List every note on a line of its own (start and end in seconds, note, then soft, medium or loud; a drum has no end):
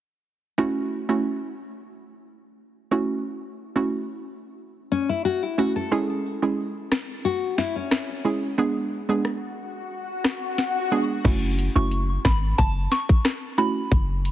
0.58 1.05 A3 medium
0.58 1.05 C#4 medium
0.58 1.05 E4 medium
0.58 1.05 F#4 loud
1.09 1.22 A3 medium
1.09 1.22 C#4 medium
1.09 1.22 E4 medium
1.09 1.22 F#4 medium
2.91 3.22 A3 medium
2.91 3.22 C#4 medium
2.91 3.22 E4 medium
2.91 3.23 F#4 medium
3.76 3.89 A3 medium
3.76 3.89 C#4 medium
3.76 3.89 E4 medium
3.76 3.89 F#4 medium
4.92 5.08 C#4 medium
5.09 5.24 E4 medium
5.25 5.43 F#4 medium
5.43 5.58 E4 medium
5.58 5.73 A3 medium
5.58 5.73 C#4 medium
5.58 5.73 E4 medium
5.58 5.75 F#4 medium
5.58 5.73 F#4 medium
5.76 6.08 A4 medium
5.91 6.38 G#3 medium
5.91 6.38 C#4 medium
5.91 6.39 E4 medium
5.91 6.39 G#4 loud
5.91 swell medium
6.42 6.56 G#3 medium
6.42 6.56 C#4 medium
6.42 6.56 E4 medium
6.42 6.56 G#4 medium
6.92 cross-stick medium
6.92 snare loud
7.25 7.57 F#4 medium
7.58 7.75 E4 medium
7.58 snare medium
7.76 8.54 C#4 medium
7.91 cross-stick medium
7.91 snare loud
8.25 8.39 G#3 medium
8.25 8.40 C#4 medium
8.25 8.40 E4 medium
8.25 8.40 G#4 medium
8.58 9.05 G#3 medium
8.58 9.05 B3 medium
8.58 9.05 D4 medium
8.58 9.05 G#4 medium
9.09 9.22 G#3 medium
9.09 9.22 B3 medium
9.09 9.22 D4 medium
9.09 9.22 G#4 medium
9.25 cross-stick medium
10.24 cross-stick medium
10.24 snare loud
10.58 snare medium
10.91 11.06 G#3 medium
10.91 11.06 B3 medium
10.91 11.06 D4 medium
10.91 11.07 G#4 medium
11.24 11.68 F#1 loud
11.24 11.71 A3 loud
11.24 11.72 C#4 medium
11.24 11.72 E4 medium
11.24 11.72 F#4 loud
11.24 kick loud
11.24 closed hi-hat medium
11.24 crash medium
11.59 closed hi-hat medium
11.76 12.17 F#1 loud
11.76 11.89 A3 medium
11.76 11.89 C#4 medium
11.76 11.89 E4 medium
11.76 11.89 F#4 medium
11.76 11.86 C#6 medium
11.91 closed hi-hat medium
12.25 12.53 G#1 medium
12.25 12.37 B5 medium
12.25 kick loud
12.25 cross-stick loud
12.25 snare loud
12.25 closed hi-hat soft
12.58 12.87 F#1 loud
12.58 12.70 A5 medium
12.58 kick medium
12.58 closed hi-hat medium
12.92 13.03 C#6 medium
12.92 snare medium
12.92 closed hi-hat medium
13.09 kick loud
13.25 cross-stick loud
13.25 snare loud
13.25 closed hi-hat medium
13.58 13.73 A3 medium
13.58 13.73 C#4 medium
13.58 13.73 E4 medium
13.58 13.73 F#4 medium
13.58 13.70 B5 medium
13.58 closed hi-hat medium
13.92 14.32 F#1 loud
13.92 kick loud
13.92 closed hi-hat medium
14.25 closed hi-hat medium